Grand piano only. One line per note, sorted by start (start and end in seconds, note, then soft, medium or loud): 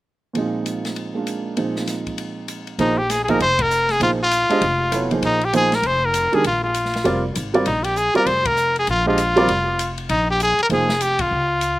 0.33 1.55 A#2 soft
0.33 1.55 F3 soft
0.33 1.13 G#3 soft
0.33 1.56 C4 soft
0.38 1.56 D#4 soft
1.14 1.56 G#3 soft
1.14 1.57 A#3 soft
1.14 1.58 D4 soft
1.14 1.58 F4 soft
1.56 2.79 A#2 soft
1.56 2.77 F3 soft
1.56 2.79 G#3 soft
1.56 2.79 C4 soft
1.56 2.78 D#4 soft
2.79 2.96 F3 medium
2.79 2.96 A#3 medium
2.79 2.96 D#4 soft
2.79 2.96 G#4 soft
2.79 2.97 C5 medium
3.29 3.39 F3 medium
3.29 3.39 A#3 medium
3.29 3.39 D#4 medium
3.29 3.40 G#4 medium
3.29 3.40 D#5 medium
4.01 4.18 F3 soft
4.01 4.18 A#3 medium
4.01 4.18 D#4 soft
4.01 4.18 G#4 soft
4.01 4.18 C5 medium
4.49 4.60 G#3 medium
4.49 4.61 D4 medium
4.49 4.61 G4 medium
4.49 4.61 C5 medium
4.49 4.61 D#5 medium
4.91 5.09 F#3 medium
4.91 5.09 B3 soft
4.91 5.09 E4 soft
4.91 5.09 A4 soft
4.91 5.10 C#5 medium
5.11 5.38 F3 medium
5.11 5.38 A#3 soft
5.11 5.38 D#4 soft
5.11 5.38 G#4 soft
5.11 5.38 C5 medium
5.53 5.70 F3 medium
5.53 5.70 A#3 medium
5.53 5.70 D#4 medium
5.53 5.71 G#4 medium
5.53 5.71 C5 medium
6.32 6.43 D#3 medium
6.32 6.43 G#3 medium
6.32 6.43 D4 medium
6.32 6.43 G4 medium
6.32 6.44 A#4 medium
7.04 7.22 G3 medium
7.04 7.22 C4 medium
7.04 7.22 F4 soft
7.04 7.22 A#4 soft
7.04 7.22 D5 medium
7.54 7.65 G3 medium
7.54 7.65 C4 medium
7.54 7.65 F4 medium
7.54 7.65 A#4 medium
7.54 7.65 D5 medium
8.15 8.25 G3 medium
8.15 8.26 C4 medium
8.15 8.26 F4 medium
8.15 8.26 A#4 medium
8.15 8.26 D5 medium
9.06 9.17 G#3 medium
9.06 9.17 D4 medium
9.06 9.17 G4 medium
9.06 9.18 C5 medium
9.06 9.18 D#5 medium
9.36 9.47 G3 medium
9.36 9.47 C4 medium
9.36 9.48 F4 medium
9.36 9.48 A#4 medium
9.36 9.48 D5 medium
10.70 10.87 F3 medium
10.70 10.87 A#3 soft
10.70 10.87 D#4 soft
10.70 10.88 G#4 soft
10.70 10.88 C5 medium